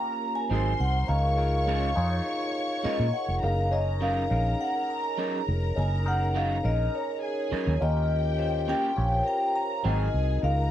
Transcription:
Already playing: A#3 C#4 F4 G4 A#4 A#5
0.35 G#5
0.50 G#1 F#3 C4 D#4 F#4 G#4 A#4 C5 C6
0.80 C2 F#5
1.08 C#2 D#4 F4 G#4 A#4 C#5 F5 C#6
1.37 D#4 F4 G#4 A#4
1.67 G#3 C#4 F4 A#4
1.95 F2 D#4 F4 G#4 C#5
2.83 G#3 C#4 F4 A#4 D#5, muted fingered electric bass stroke
3.00 A#2
3.13 F#5
3.28 F1
3.42 F#1 C#4 D#4 G#4 A#4 F5 A#5
3.71 C#4 D#4 G#4 C#5 D#5
4.01 F#3 C#4 D#4 A#4 F5
4.30 A#1 C#4 D#4 G#4 A#4
4.61 F#5
4.90 A#5
5.17 F#3 C#4 D#4 A#4
5.48 F1
5.76 F#1 C#4 D#4 G#4 A#4 G#5
6.05 C#4 D#4 G#4 A#4 F#5
6.34 F#3 C#4 D#4 A#4 F5
6.64 A#1 C#4 D#4 G#4 A#4 D#5
6.95 C#5
7.22 G#4 G#5
7.51 F#3 C#4 D#4 A#4, muted fingered electric bass stroke
7.67 D#2
7.80 D#2 C#4 F4 G4 A#4 D#5 G5
8.38 C#4 F4 G4 C5
8.68 A#3 C#4 G4 A#4 G5
8.96 A#1 C#4 F4 G4 C#5
9.26 A#4 G5 A#5
9.56 A#5
9.84 G#1 F#3 C4 D#4 F#4 G#4 A#4 D#5 G#5
10.14 C2
10.42 C#2 D#4 F4 G#4 A#4 F5 A#5

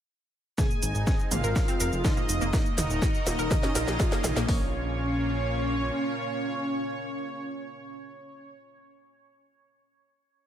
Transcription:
0.58 G#3 A#3 C4 D#4 G#4 G#5, kick, snare, mid tom, shaker
0.71 shaker
0.83 G#1, open hi-hat, shaker
0.95 G#1, shaker
1.07 kick, snare, shaker
1.19 shaker
1.31 G#1 A#3 F4 F5, mid tom, open hi-hat, shaker
1.44 G#1 A#4, shaker
1.56 F4 A#4, kick, snare, shaker
1.68 C4, open hi-hat, shaker
1.80 F1 A#4, open hi-hat, shaker
1.93 F1, shaker
2.05 D#4 F4 D#5, kick, snare, mid tom, shaker
2.17 A#3, shaker
2.29 F1, open hi-hat, shaker
2.41 F1 A#3, shaker
2.53 D#3 A#3 D#4 F#4 A#4, kick, snare, shaker
2.66 shaker
2.78 D#1 D#4 D#5, snare, mid tom, open hi-hat, shaker
2.90 D#1, shaker
3.02 kick, snare, shaker
3.14 shaker
3.27 D#1 A#3, snare, open hi-hat, shaker
3.39 D#1 A#4, shaker
3.51 A#3 C#4 F4 A#4, kick, snare, mid tom, shaker
3.63 C#4, snare, shaker
3.75 A#1 A#4, snare, open hi-hat, shaker
3.88 A#1, snare, shaker
4.00 F4, kick, snare, shaker
4.12 A#3, snare, shaker
4.24 A#1, snare, mid tom, open hi-hat, shaker
4.36 A#1 A#3, snare, shaker
4.48 A#1 A#2 A#3 C#4 F4 C#5, kick, open hi-hat

